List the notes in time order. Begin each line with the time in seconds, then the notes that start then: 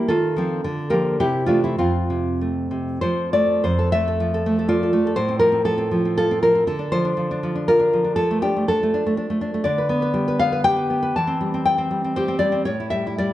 Already playing: A#3
0.08 D#3 F4 A4
0.36 F3 C4
0.64 D3
0.90 F3 A#3 G4 A#4
1.20 C3 E4 G4
1.46 E3 A3 D4 F4
1.64 C4 E4
1.78 F2 C4 F4
2.10 C3
2.41 A3
2.71 C3
3.01 F3 C5
3.33 A3 D5
3.64 F2 C5
3.79 A4
3.92 A3 E5
4.08 A4
4.20 F3
4.34 A4
4.46 A3
4.59 A4
4.69 F4 D5
4.83 A4
4.93 A3
5.07 A4
5.16 A2 C5
5.29 C4
5.39 F3 A#4
5.52 C4
5.65 F3 A4
5.78 C4
5.91 F3
6.05 C4
6.18 F4 A4
6.31 C4
6.43 F3 A#4
6.55 C4
6.67 D3 A4
6.79 D4
6.92 F3 C5
7.05 D4
7.17 F3
7.31 D4
7.43 F3
7.55 D4
7.68 F4 A#4
7.79 D4
7.93 F3
8.04 D4
8.16 F3 A4
8.31 A3
8.42 D4 G4
8.57 A3
8.68 D4 A4
8.83 A3
8.94 D4
9.06 A3
9.17 D4
9.30 A3
9.41 D4
9.54 A3
9.64 D3 D5
9.78 B4
9.89 B3
10.02 B4
10.14 G3
10.28 B4
10.39 B3 F5
10.52 B4
10.64 G4 G5
10.76 B4
10.90 B3
11.03 B4
11.16 E3 A5
11.27 C4
11.41 G3
11.54 C4
11.66 G3 G5
11.78 C4
11.91 G3
12.04 C4
12.16 G4 C5
12.28 C4
12.39 G3 D5
12.52 C4
12.65 A2 C#5
12.80 E4
12.90 G3 E5
13.07 E4
13.18 G3 D5